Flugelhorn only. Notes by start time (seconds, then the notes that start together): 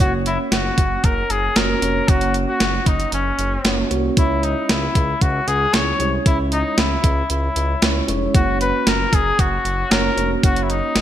0.00 F#4
0.27 E4
0.52 F#4
1.05 A#4
1.31 G#4
1.57 A#4
2.09 F#4
2.48 F#4
2.87 D#4
3.14 C#4
4.18 E4
4.44 D#4
4.70 E4
5.22 F#4
5.48 G#4
5.74 C#5
6.27 E4
6.52 D#4
6.78 E4
7.31 E4
8.35 F#4
8.61 B4
8.88 A#4
9.14 G#4
9.40 F#4
9.91 A#4
10.44 F#4
10.63 E4
10.70 D#4